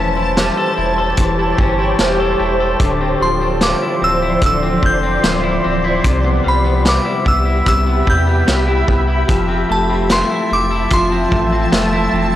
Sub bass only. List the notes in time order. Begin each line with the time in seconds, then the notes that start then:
Already playing: E1
0.78 E1
1.18 E1
1.59 G1
2.00 E1
2.40 E1
2.80 D1
3.21 D1
4.02 D1
4.42 D1
4.83 F1
5.24 D1
5.65 D1
6.05 C2
6.46 C2
7.26 C2
7.67 C2
8.07 E2
8.48 C2
8.89 C2
9.29 F1
9.70 F1
10.52 F1
10.91 F1
11.32 A1
11.72 F1
12.13 F1